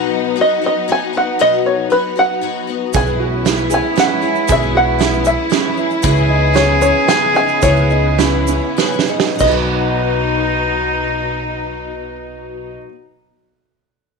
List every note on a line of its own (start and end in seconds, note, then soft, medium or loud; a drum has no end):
0.00 0.36 B2 medium
0.00 0.34 F#3 medium
0.00 2.91 F#3 medium
0.00 0.36 B3 medium
0.00 2.91 B3 medium
0.00 0.36 D#4 loud
0.00 2.90 D#4 medium
0.00 0.37 F#4 loud
0.36 0.62 F#3 medium
0.36 0.63 B3 medium
0.36 0.62 D#4 medium
0.36 0.60 F#4 medium
0.41 0.65 D#5 loud
0.62 0.87 B3 soft
0.62 0.88 D#4 medium
0.62 0.88 F#4 medium
0.66 0.89 D#5 loud
0.88 1.14 F#3 medium
0.88 1.14 B3 medium
0.88 1.13 D#4 medium
0.88 1.12 F#4 medium
0.92 1.17 G#5 loud
1.13 1.39 B3 soft
1.13 1.39 D#4 medium
1.13 1.39 F#4 medium
1.17 1.40 F#5 loud
1.39 1.91 B2 medium
1.39 1.89 F#3 medium
1.39 1.90 B3 medium
1.39 1.90 D#4 medium
1.39 1.91 F#4 medium
1.39 1.65 D#5 loud
1.66 1.90 C#5 medium
1.90 2.17 F#3 medium
1.90 2.17 B3 medium
1.90 2.16 D#4 medium
1.90 2.14 F#4 medium
1.90 2.18 B4 medium
2.16 2.41 B3 soft
2.16 2.42 D#4 medium
2.16 2.42 F#4 medium
2.16 2.96 F#5 loud
2.41 2.68 F#3 medium
2.41 2.69 B3 medium
2.41 2.67 D#4 medium
2.41 2.66 F#4 medium
2.67 2.92 B3 soft
2.67 2.94 D#4 soft
2.67 2.94 F#4 medium
2.93 3.79 B1 medium
2.93 3.45 B2 medium
2.93 3.45 E3 medium
2.93 6.00 G#3 medium
2.93 3.46 B3 medium
2.93 3.47 C#4 medium
2.93 6.00 C#4 medium
2.93 6.05 E4 medium
2.93 9.36 E4 medium
2.93 3.47 G#4 medium
2.93 3.20 G#4 loud
2.93 3.73 G#5 loud
2.93 kick loud
2.93 closed hi-hat medium
2.93 shaker loud
3.07 shaker soft
3.20 3.45 F#4 medium
3.45 3.71 E3 medium
3.45 3.71 B3 medium
3.45 3.70 C#4 medium
3.45 3.70 E4 medium
3.45 3.68 G#4 medium
3.45 snare medium
3.45 closed hi-hat medium
3.45 shaker soft
3.58 shaker soft
3.70 3.95 B3 soft
3.70 3.96 C#4 medium
3.70 3.97 E4 medium
3.70 3.96 G#4 medium
3.70 shaker loud
3.74 3.97 G#5 loud
3.96 4.22 E3 medium
3.96 4.22 B3 medium
3.96 4.21 C#4 medium
3.96 4.23 C#4 medium
3.96 4.20 G#4 medium
3.96 4.51 F#5 medium
3.96 snare loud
3.96 closed hi-hat medium
4.22 4.47 B3 soft
4.22 4.47 C#4 soft
4.22 4.48 E4 medium
4.22 4.48 G#4 medium
4.22 shaker soft
4.35 shaker soft
4.47 5.34 B1 loud
4.47 4.99 B2 medium
4.47 4.98 E3 medium
4.47 4.99 B3 medium
4.47 4.99 C#4 medium
4.47 4.99 G#4 medium
4.47 4.74 G#4 loud
4.47 kick loud
4.47 closed hi-hat medium
4.47 shaker loud
4.52 4.76 E5 loud
4.62 shaker soft
4.75 5.00 F#4 medium
4.75 5.26 F#5 loud
4.98 5.25 E3 medium
4.98 5.25 B3 medium
4.98 5.24 C#4 medium
4.98 5.25 E4 medium
4.98 5.23 G#4 medium
4.98 snare medium
4.98 closed hi-hat medium
4.98 shaker soft
5.13 shaker soft
5.24 5.49 B3 soft
5.24 5.50 C#4 medium
5.24 5.52 E4 medium
5.24 5.51 G#4 medium
5.24 5.74 E5 medium
5.24 shaker loud
5.50 6.02 E3 medium
5.50 6.03 B3 medium
5.50 6.03 C#4 medium
5.50 5.77 C#4 medium
5.50 6.04 G#4 medium
5.50 snare medium
5.50 closed hi-hat medium
5.77 6.02 E4 medium
5.77 shaker soft
5.90 shaker soft
6.02 6.90 C#2 loud
6.02 6.54 C#3 medium
6.02 9.36 C#3 medium
6.02 6.52 E3 loud
6.02 6.54 B3 loud
6.02 9.36 B3 medium
6.02 6.54 C#4 loud
6.02 6.29 E4 loud
6.02 8.20 G#4 loud
6.02 6.54 G#4 loud
6.02 kick loud
6.02 closed hi-hat medium
6.02 shaker loud
6.17 shaker soft
6.29 6.54 D#4 medium
6.54 7.07 E3 medium
6.54 7.08 B3 medium
6.54 7.07 C#4 medium
6.54 6.80 C#4 medium
6.54 7.08 G#4 medium
6.54 6.81 C#5 medium
6.54 snare loud
6.54 closed hi-hat medium
6.54 shaker soft
6.81 7.07 C#4 medium
6.81 7.06 C#5 loud
6.81 shaker loud
7.08 7.35 E3 medium
7.08 7.34 B3 medium
7.08 7.35 B3 medium
7.08 7.34 C#4 medium
7.08 7.33 G#4 medium
7.08 7.35 G#5 loud
7.08 snare loud
7.08 closed hi-hat medium
7.34 7.62 B3 soft
7.34 7.62 C#4 medium
7.34 7.61 D#4 medium
7.34 7.62 G#4 medium
7.34 7.63 G#5 loud
7.34 shaker soft
7.48 shaker soft
7.62 8.58 C#2 medium
7.62 8.18 C#3 medium
7.62 8.17 E3 medium
7.62 8.18 B3 medium
7.62 8.19 C#4 medium
7.62 7.89 E4 loud
7.62 8.19 G#4 medium
7.62 9.04 C#5 loud
7.62 kick loud
7.62 closed hi-hat medium
7.62 shaker loud
7.76 shaker soft
7.90 8.18 D#4 medium
7.90 shaker soft
8.18 8.47 E3 medium
8.18 8.47 B3 medium
8.18 8.47 C#4 medium
8.18 9.08 E4 medium
8.18 8.46 G#4 medium
8.18 snare medium
8.18 closed hi-hat medium
8.47 8.76 B3 medium
8.47 8.77 C#4 medium
8.47 8.77 G#4 medium
8.47 shaker loud
8.77 9.07 E3 medium
8.77 9.08 B3 medium
8.77 9.07 C#4 medium
8.77 9.06 G#4 medium
8.77 snare medium
8.93 shaker soft
8.99 snare medium
9.07 9.40 B3 soft
9.07 9.40 C#4 medium
9.07 9.39 D#4 medium
9.07 9.39 G#4 medium
9.07 shaker soft
9.20 snare loud
9.35 12.85 B2 medium
9.35 12.73 B2 medium
9.35 12.72 F#3 medium
9.35 12.73 D#4 medium
9.35 shaker medium
9.40 12.75 B1 loud
9.40 12.90 F#3 medium
9.40 12.76 B3 medium
9.40 12.94 B3 medium
9.40 12.76 D#4 medium
9.40 12.75 D#5 medium
9.40 kick loud
9.40 crash medium
9.45 12.80 D#4 medium
9.45 12.98 D#4 medium
9.45 12.84 F#4 medium
9.51 13.01 F#4 medium
9.51 12.88 B4 medium